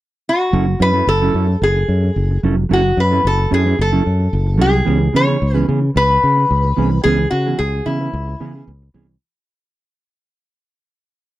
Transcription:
0.29 F#4
0.53 F#1 F#3 C#4 E4 A4
0.67 muted clean electric guitar stroke
0.79 F#2 F#3 C#4 E4 B4
0.93 F#3 C#4 E4 A4
1.07 F#1 A4, muted clean electric guitar stroke
1.21 F#3 C#4 E4 A4
1.34 F#2 F#3 C#4 E4 A4
1.49 muted clean electric guitar stroke
1.62 F#1 G#4, muted clean electric guitar stroke
1.76 muted clean electric guitar stroke
1.88 F#2
2.03 muted clean electric guitar stroke
2.16 F#1, muted clean electric guitar stroke
2.31 muted clean electric guitar stroke
2.43 F1 F#3 C#4 E4 A4
2.57 muted clean electric guitar stroke
2.69 F#1 F#3 C#4 E4 A4
2.73 F#4
2.84 muted clean electric guitar stroke
2.96 F#2 B4, muted clean electric guitar stroke
3.11 F#3 C#4 E4 A4
3.23 F#1 A4, muted clean electric guitar stroke
3.38 muted clean electric guitar stroke
3.50 F#2 F#3 C#4 E4 G#4 A4
3.66 F#3 C#4 E4 B4
3.78 F#1 A4, muted clean electric guitar stroke
3.92 F#3 C#4 E4 A4
4.05 F#2, muted clean electric guitar stroke
4.19 muted clean electric guitar stroke
4.33 F#1
4.46 muted clean electric guitar stroke
4.58 C2 F#3 C#4 E4 G#4 A4
4.73 muted clean electric guitar stroke
4.85 C#2 E3 B3 C#4 G#4
5.01 muted clean electric guitar stroke
5.13 C#3 E3 B3 C#4 B4 C#5
5.27 E3 B3 C#4 G#4
5.40 C#2, muted clean electric guitar stroke
5.54 E3 B3 C#4 G#4
5.67 C#3 E3 B3 C#4 G#4
5.82 muted clean electric guitar stroke
5.95 C#2 B4, muted clean electric guitar stroke
6.09 muted clean electric guitar stroke
6.24 C#3
6.36 muted clean electric guitar stroke
6.49 C#2, muted clean electric guitar stroke
6.65 muted clean electric guitar stroke
6.76 C2 E3 B3 C#4 G#4
6.92 muted clean electric guitar stroke
7.04 C#2 E3 B3 C#4 G#4
7.20 muted clean electric guitar stroke
7.31 C#3 F#4, muted clean electric guitar stroke
7.46 E3 B3 C#4 G#4
7.59 C#2 G#4, muted clean electric guitar stroke
7.74 muted clean electric guitar stroke
7.85 C#3 E3 B3 C#4 E4 G#4
8.00 E3 B3 C#4 B4
8.13 C#2, muted clean electric guitar stroke
8.28 muted clean electric guitar stroke
8.40 C#3 E3 B3 C#4 G#4
8.55 E3 B3 C#4 G#4
8.67 C#2
8.82 muted clean electric guitar stroke
8.94 C2 E3 B3 C#4 G#4

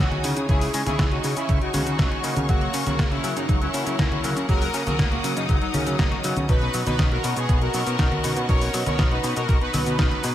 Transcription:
Already playing: C#3 E3 C#4 D#4 F#4 G#4 C#5 G#5 D#6
0.12 C#4, closed hi-hat, high conga
0.24 C#3 C#4 D#4 E4 G#4, open hi-hat, cabasa
0.37 C#3, closed hi-hat, cabasa
0.49 C#2 C#3 E4 G#4 C#6, kick, closed hi-hat, cabasa
0.61 C#3, open hi-hat
0.74 C#3 G#3 C#4 D#4 E4 G#4, open hi-hat, cabasa
0.86 C#3 E4 G#4, snare, closed hi-hat, high conga, cabasa
0.99 C#2 E3, kick, snare, closed hi-hat, cabasa
1.11 C#4 D#4 F#4, closed hi-hat
1.24 C#3 C#4 D#4 E4 G#4, open hi-hat, cabasa
1.37 C#3 C#4 E4, closed hi-hat, cabasa
1.49 C#2 C#3, kick, closed hi-hat, cabasa
1.61 C#3 D#4 F#4, closed hi-hat
1.74 C#3 E3 G#3 C#4 D#4 G#4, open hi-hat, high conga, cabasa
1.86 C#3, closed hi-hat, cabasa
1.99 C#2 E3, kick, snare, closed hi-hat, cabasa
2.11 C#4, snare, closed hi-hat
2.24 C#3 A#3 C#4 F#4 A#4, open hi-hat, cabasa
2.36 C#3, closed hi-hat, high conga, cabasa
2.49 C#2 F#3 A#3 F#4 A#4 F#5, kick, closed hi-hat, cabasa
2.61 F#3, closed hi-hat
2.74 C#3 A#3 C#4 F#4 A#4, open hi-hat, cabasa
2.86 C#3 F#3 A#3 F#4, snare, closed hi-hat, high conga, cabasa
2.99 C#2 A#3, kick, snare, closed hi-hat, cabasa
3.11 C#4 E4 F#4, closed hi-hat
3.24 C#3 F#3 A#3 C#4 F#4 A#4, open hi-hat, cabasa
3.36 F#2 C#3 F#3 D#4, closed hi-hat, cabasa
3.49 C#2 F#3, kick, closed hi-hat, cabasa
3.61 F#3 C#4 E4, closed hi-hat
3.74 C#3 A#3 C#4 F#4 A#4, open hi-hat, cabasa
3.86 C#3 F#3, closed hi-hat, cabasa
3.99 C#2 A#3, kick, snare, closed hi-hat, cabasa
4.11 F#4, closed hi-hat, high conga
4.24 C#3 F#3 A#3 C#4 F#4 A#4, open hi-hat, cabasa
4.36 F#2 C#3, closed hi-hat, cabasa
4.49 C#2 F#3 F#4 A#4 D#6, kick, closed hi-hat, cabasa
4.61 F#3, open hi-hat
4.74 C#3 A#3 C#4 F#4 A#4, open hi-hat, cabasa
4.86 C#3 F#3 F#4 A#4, snare, closed hi-hat, high conga, cabasa
4.99 C#2 A#3, kick, snare, closed hi-hat, cabasa
5.11 A#3 F#4, closed hi-hat
5.24 C#3 F#3 A#3 C#4 F#4 A#4, open hi-hat, cabasa
5.36 F#2 C#3 F#3 D#4, closed hi-hat, cabasa
5.49 C#2 F#3, kick, closed hi-hat, cabasa
5.61 F#3 D#4, closed hi-hat
5.74 C#3 A#3 C#4 F#4 A#4, open hi-hat, high conga, cabasa
5.87 C#3 F#3, closed hi-hat, cabasa
5.99 C#2 A#3, kick, snare, closed hi-hat, cabasa
6.12 F#4, snare, closed hi-hat
6.24 B2 C#3 F#3 B3 C#4 D#4 F#4, open hi-hat, cabasa
6.37 F#2 C#3, closed hi-hat, high conga, cabasa
6.49 B1 B2 B3 D#4 B4 D#5 F#5 C#6, kick, closed hi-hat, cabasa
6.62 B2, closed hi-hat
6.74 B2 F#3 B3 C#4 D#4 F#4, open hi-hat, cabasa
6.87 B2 D#4 B4, snare, closed hi-hat, high conga, cabasa
6.99 B1 D#3, kick, snare, closed hi-hat, cabasa
7.12 B3 F#4 A#4, closed hi-hat
7.24 B2 B3 C#4 D#4 F#4, open hi-hat, cabasa
7.37 B2 B3 G#4, closed hi-hat, cabasa
7.49 B1 B2, kick, closed hi-hat, cabasa
7.61 B2 F#4 A#4, closed hi-hat
7.74 B2 F#3 B3 C#4 D#4 F#4, open hi-hat, cabasa
7.86 B2, closed hi-hat, cabasa
7.99 B1 D#3, kick, snare, closed hi-hat, cabasa
8.11 B3, closed hi-hat, high conga
8.24 B2 B3 C#4 D#4 F#4, open hi-hat, cabasa
8.36 B2, closed hi-hat, cabasa
8.49 B1 B2 A#4 C#5, kick, closed hi-hat, cabasa
8.61 B2, open hi-hat
8.74 B2 F#3 B3 C#4 D#4 F#4, open hi-hat, cabasa
8.86 B2 A#4 C#5, snare, closed hi-hat, high conga, cabasa
8.99 B1 D#3, kick, snare, closed hi-hat, cabasa
9.11 B3 D#4 B4, closed hi-hat
9.24 B2 B3 C#4 D#4 F#4, open hi-hat, cabasa
9.36 B2 F#4 A#4, closed hi-hat, cabasa
9.49 B1 B2, kick, closed hi-hat, cabasa
9.61 B2 D#4 B4, closed hi-hat
9.74 B2 F#3 B3 C#4 D#4 F#4, open hi-hat, high conga, cabasa
9.86 B2, closed hi-hat, cabasa
9.99 B1 D#3, kick, snare, closed hi-hat, cabasa
10.11 B3, snare, closed hi-hat
10.24 G#2 B2 G#3 B3 D#4 G#4, open hi-hat, cabasa

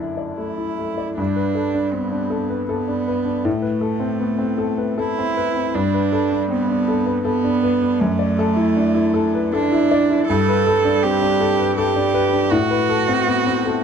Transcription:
Already playing: F#2 A3 D4 E4 D5 A5 B5
0.00 D3 E5
0.17 D5
0.38 A3 E4
0.58 E4
0.79 A3
0.98 D5
1.17 G2 D4
1.36 B4
1.55 A4
1.74 D4
1.93 B3 C4
2.11 D4
2.30 A4
2.50 B4
2.69 B3 A4
2.88 D4
3.08 B4
3.25 D4
3.45 A2 A3
3.62 B4
3.81 A4
4.00 C4
4.20 B3
4.39 C4
4.58 A4
4.78 B4
4.98 E4 A4
5.19 C4
5.37 B4
5.56 C4
5.75 G2 D4
5.94 B4
6.13 A4
6.32 D4
6.51 B3 C4
6.69 D4
6.88 A4
7.06 B4
7.25 B3 A4
7.44 D4
7.63 B4
7.82 D4
8.00 F#2 A3
8.19 D5
8.39 A4
8.56 E4
8.76 D4
8.94 E4
9.14 A4
9.35 B4
9.52 D4 A4
9.72 E4
9.91 D5
10.10 E4
10.28 G2 A4
10.49 B4
10.67 A4
10.85 D4
11.03 C4 G4
11.22 D4
11.40 A4
11.59 B4
11.78 G4 A4
11.96 D4
12.14 B4
12.33 D4
12.51 A2 F#4
12.70 B4
12.89 A4
13.08 C4
13.27 B3
13.47 C4
13.65 A4

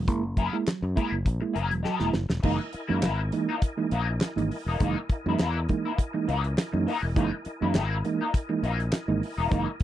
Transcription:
0.07 F#1 G#3 A#3 E4, kick, closed hi-hat
0.37 F#3 E4 G#4 A#4, kick, closed hi-hat
0.53 G#3 A#3 E4
0.67 F#3, muted fingered electric bass stroke, snare, clap, closed hi-hat
0.82 F#2, muted clean electric guitar stroke
0.96 G#3 A#3 E4 G#4 A#4, kick, closed hi-hat
1.12 F#1 A#3 E4, muted clean electric guitar stroke
1.26 A#1, muted clean electric guitar stroke, kick, closed hi-hat
1.41 G#3 A#3 E4, muted clean electric guitar stroke
1.53 F#1 E4 G#4 A#4, closed hi-hat
1.70 E1 F#3, muted clean electric guitar stroke, closed hi-hat
1.83 F#3 D#4 G4 A4, snare
1.95 E4 G#4 A#4
2.00 E1 G#3 A#3 E4, snare
2.13 F#1 A#3 E4, muted clean electric guitar stroke, snare
2.29 E1, muted clean electric guitar stroke, snare
2.43 F#1 E3 G#3 A#3 D#4 E4 A#4 D#5 G#5, kick, crash
2.59 muted clean electric guitar stroke
2.73 muted clean electric guitar stroke, muted fingered electric bass stroke, closed hi-hat
2.88 F#2 E3 G#3 A#3 D#4 E4
3.02 G#1 E3 A#3 E4, snare, clap, closed hi-hat
3.32 E3 G#3 A#3 D#4, muted clean electric guitar stroke, closed hi-hat
3.48 E3 A#3 D#4
3.62 muted clean electric guitar stroke, kick, closed hi-hat
3.77 E3 G#3 A#3 D#4, muted clean electric guitar stroke
3.91 A#1 E3 A#3 D#4, closed hi-hat
4.08 muted clean electric guitar stroke
4.21 muted clean electric guitar stroke, snare, clap, closed hi-hat
4.36 G#1 E3 G#3 A#3 D#4, muted clean electric guitar stroke, closed hi-hat
4.51 open hi-hat
4.66 E1 E3 A#3 D#4
4.80 F#1 E3 G#3 A#3 D#4, kick, closed hi-hat
4.85 D#4
4.99 muted clean electric guitar stroke
5.09 muted fingered electric bass stroke, muted clean electric guitar stroke, kick, closed hi-hat
5.26 F#2 E3 G#3 A#3 D#4 E4
5.30 E3
5.39 E2 E3 A#3 E4, snare, clap, closed hi-hat
5.69 E3 G#3 A#3 D#4, muted clean electric guitar stroke, kick, closed hi-hat
5.85 E3 A#3 D#4 E4
5.98 muted clean electric guitar stroke, kick, closed hi-hat
6.13 E3 G#3 A#3 D#4, muted clean electric guitar stroke
6.28 C#2 E3 A#3 D#4, closed hi-hat
6.44 muted clean electric guitar stroke, closed hi-hat
6.58 muted clean electric guitar stroke, snare, clap, closed hi-hat
6.73 F#2 E3 G#3 A#3 D#4, muted clean electric guitar stroke
6.87 E3 A#3 D#4, open hi-hat
7.02 E1, muted clean electric guitar stroke
7.16 F#1 E3 G#3 A#3 D#4, kick, closed hi-hat
7.32 muted clean electric guitar stroke
7.45 muted fingered electric bass stroke, muted clean electric guitar stroke, closed hi-hat
7.61 F#2 E3 G#3 A#3 D#4 E4
7.74 G#1 E3 A#3 E4, snare, clap, closed hi-hat
8.05 E3 G#3 A#3 D#4, muted clean electric guitar stroke, closed hi-hat
8.21 E3 A#3 D#4
8.34 muted clean electric guitar stroke, kick, closed hi-hat
8.49 E3 G#3 A#3 D#4, muted clean electric guitar stroke
8.63 A#1 E3 A#3 D#4, closed hi-hat
8.79 muted clean electric guitar stroke, closed hi-hat
8.93 muted clean electric guitar stroke, snare, clap, closed hi-hat
9.08 G#1 E3 G#3 A#3 D#4, muted clean electric guitar stroke
9.23 open hi-hat
9.38 E1 E3 A#3 D#4
9.51 F#1 E3 G#3 A#3 D#4, kick, closed hi-hat
9.68 muted clean electric guitar stroke
9.80 closed hi-hat

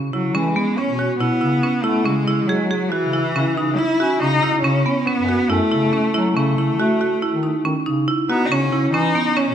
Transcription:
Already playing: C#3
0.13 C#3 F#3 E4
0.35 E3 G#3 C#4
0.42 A3
0.49 G#3
0.56 B3
0.77 C#4
0.88 B2
0.99 F#4
1.18 B2 B3 E4
1.41 C#3 E4
1.63 C#4
1.83 A3 B3 E4
2.04 C#3 G#3 C#4
2.27 C#3 E4
2.47 F#3 G#3 G#4
2.71 G#4
2.90 E3 F#4
3.03 C#3
3.13 E4
3.36 C#3 C#4
3.57 C#3 D#4
3.77 E4
4.00 C#4 F#4
4.19 C#3 C#4 D#4
4.42 C#3 E4
4.62 C#3 C#4
4.86 B3
5.06 B3 C#4
5.18 F#2
5.29 F#4
5.50 F#2 A3 E4
5.71 C#3 E4
5.93 C#4
6.14 F#3 E4
6.35 C#3 A3 C#4
6.58 C#3 E4
6.79 A3 F#4
7.01 F#4
7.22 E4
7.32 D#3
7.43 D#4
7.65 D#3 C#4
7.86 C#3 D#4
8.08 E4
8.29 B3 D#4 F#4
8.46 D#4
8.50 C#3 C#4
8.72 C#3 E4
8.93 E3 C#4 D#4
9.15 B3
9.36 C#4
9.47 B2

